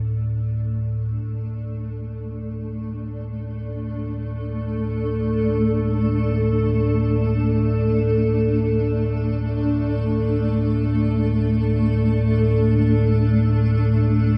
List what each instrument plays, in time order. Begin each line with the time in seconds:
Already playing: synth drone D2 A2, ambient pad A3 D4 A4 D5
1.20 synth drone D2 A2